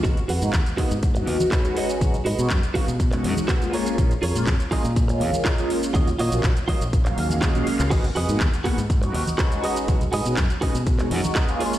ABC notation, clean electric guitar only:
X:1
M:4/4
L:1/16
Q:1/4=122
K:Blyd
V:1 name="Clean electric guitar"
[FGBd] z [FGBf]2 z2 [FGBd]2 z4 [FGBc]2 [FGBd]2- | [FGBd]2 [FGBd]2 z2 [FGBe]2 z4 [FGBf]2 [EGAc]2- | [EGAc]2 [EGAc]2 z2 [EGAd]2 z4 [EGAd]2 z2 | [EFcd] z [EFcd]2 z2 [EFcd]2 z4 [EFcd]2 z2 |
[FGBd] z [FGBd]2 z2 [FGBf]2 z4 [FGBc]2 [FGBd]2- | [FGBd]2 [FGBd]2 z2 [FGBd]2 z4 [FGBd]2 [EGAc]2 |]